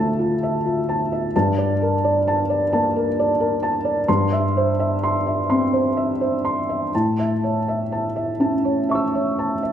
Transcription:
felt piano
Already playing: D2 A3 F4 E5 A5
0.19 F4
0.43 E5
0.65 F4
0.89 A5
1.12 E5
1.36 G2 A5
1.58 D5
1.82 A#4
2.04 D5
2.28 A5
2.50 D5
2.73 A#3 A5
2.96 A#4
3.19 D5
3.40 A#4
3.63 A5
3.85 D5
4.08 G2 C6
4.32 E5
4.57 C5
4.80 E5
5.04 C6
5.27 E5
5.50 C4 C6
5.73 C5
5.97 E5
6.21 C5
6.45 C6
6.69 E5
6.95 A2 A5
7.19 E5
7.43 C#5
7.68 E5
7.92 A5
8.16 E5
8.40 C#4 A5
8.65 C#5
8.89 E5 C#6
8.95 E6
9.15 C#5
9.39 A5
9.63 E5

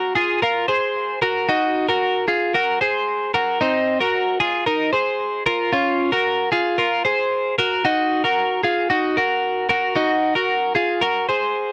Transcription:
clean electric guitar
Already playing: F#4 A#4
0.15 F4 G#4
0.42 F4 A#4
0.68 G#4 C5
1.22 F#4 A#4
1.49 D#4 F#4
1.89 F#4 A#4
2.28 F4 G#4
2.54 F#4 A#4
2.81 G#4 C5
3.34 F#4 A#4
3.61 C4 D#4
4.01 F#4 A#4
4.40 F4 G#4
4.66 D#4 A#4
4.93 G#4 C5
5.46 F4 A#4
5.73 C#4 F4
6.12 F#4 A#4
6.52 F4 G#4
6.78 F4 A#4
7.05 G#4 C5
7.58 F#4 A#4
7.85 D#4 F#4
8.24 F#4 A#4
8.63 F4 G#4
8.90 D#4 F#4
9.17 F#4 A#4
9.69 F#4 A#4
9.96 D#4 F#4
10.35 F#4 A#4
10.75 F4 G#4
11.01 F#4 A#4
11.29 G#4 C5

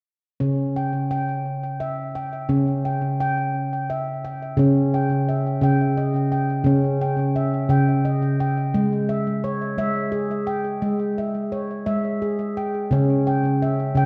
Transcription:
handpan
0.40 C#3 C#4
0.76 G5
1.11 G5
1.80 E5
2.15 G5
2.49 C#3 C#4
2.85 G5
3.20 G5
3.90 E5
4.25 G5
4.57 C#3 C#4
4.94 G5
5.29 E5
5.61 C#3 G5
5.97 D#5
6.32 G5
6.64 C#3 C#4
7.01 G5
7.36 E5
7.69 C#3 G5
8.05 D#5
8.40 G5
8.74 G#3
9.09 E5
9.44 C#5
9.78 G#3 E5
10.12 G#4
10.47 G5
10.82 G#3
11.18 E5
11.52 C#5
11.86 G#3 E5
12.22 G#4
12.57 G5
12.91 C#3 C#4
13.27 G5
13.62 E5
13.95 C#3 G5

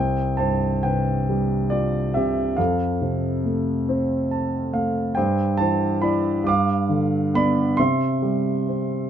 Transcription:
grand piano
Already playing: C2 C5 G5
0.37 G2 C5 A5
0.83 C3 B4 G5
1.29 G3
1.70 F4 D5
2.14 C3 G4 E5
2.57 F2 A4 F5
3.01 C3
3.44 A3
3.89 C4
4.31 A5
4.73 A3 F5
5.15 G2 C5 G5
5.57 E3 C5 A5
6.02 E4 D5 B5
6.44 G2 D6
6.49 F5
6.89 D3
7.34 B3 D5 B5
7.77 C3 E5 C6
8.22 G3
8.69 C4

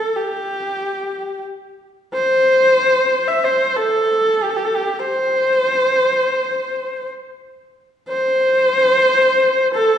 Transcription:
horsehead fiddle
Already playing: A4
0.16 G4
2.13 C5
3.28 E5
3.44 C5
3.77 A4
4.43 G4
4.50 A4
4.56 G4
4.65 A4
4.75 G4
4.99 C5
8.09 C5
9.74 A4

